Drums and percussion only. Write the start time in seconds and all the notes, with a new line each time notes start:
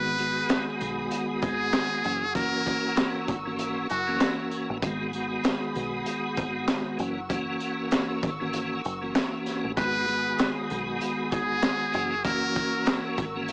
0.18 closed hi-hat, shaker, sleigh bells
0.49 snare, clap, closed hi-hat, sleigh bells
0.80 shaker, sleigh bells
1.11 closed hi-hat, sleigh bells
1.42 kick, closed hi-hat, shaker, sleigh bells
1.73 snare, clap, closed hi-hat, sleigh bells
2.04 shaker, sleigh bells
2.35 kick, closed hi-hat, sleigh bells
2.66 kick, shaker, sleigh bells
2.96 snare, clap, closed hi-hat, sleigh bells
3.28 kick, shaker, sleigh bells
3.58 closed hi-hat, sleigh bells
3.90 closed hi-hat, shaker, sleigh bells
4.20 snare, clap, closed hi-hat, sleigh bells
4.51 shaker, sleigh bells
4.82 kick, closed hi-hat, sleigh bells
5.13 shaker, sleigh bells
5.44 snare, clap, closed hi-hat, sleigh bells
5.75 shaker, sleigh bells
6.06 closed hi-hat, sleigh bells
6.37 kick, closed hi-hat, shaker, sleigh bells
6.67 snare, clap, closed hi-hat, sleigh bells
6.99 shaker, sleigh bells
7.29 kick, closed hi-hat, sleigh bells
7.60 closed hi-hat, shaker, sleigh bells
7.91 snare, clap, closed hi-hat, sleigh bells
8.23 kick, shaker, sleigh bells
8.53 closed hi-hat, sleigh bells
8.84 shaker, sleigh bells
9.15 snare, clap, closed hi-hat, sleigh bells
9.46 snare, shaker, sleigh bells
9.77 kick, closed hi-hat, sleigh bells
10.08 shaker, sleigh bells
10.38 snare, clap, closed hi-hat, sleigh bells
10.70 shaker, sleigh bells
11.00 closed hi-hat, sleigh bells
11.32 kick, closed hi-hat, shaker, sleigh bells
11.62 snare, clap, closed hi-hat, sleigh bells
11.93 shaker, sleigh bells
12.24 kick, closed hi-hat, sleigh bells
12.55 kick, closed hi-hat, shaker, sleigh bells
12.86 snare, clap, closed hi-hat, sleigh bells
13.18 kick, shaker, sleigh bells
13.48 closed hi-hat, sleigh bells